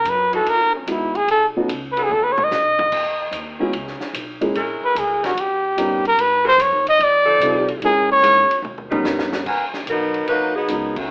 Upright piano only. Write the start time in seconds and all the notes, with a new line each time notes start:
0.88 G#3 B3 D#4 E4 F#4
1.56 A3 B3 C#4 D#4 F#4
3.60 G#3 B3 C#4 E4 F#4
4.41 G#3 A#3 C#4 E4 G#4
5.77 G3 B3 C#4 D#4 A#4
7.42 G3 C4 D#4 F4 A4
7.83 G#3 A#3 C#4 E4 A#4
8.91 G3 B3 C#4 D#4 A#4
10.69 G#3 B3 D#4 F#4 A#4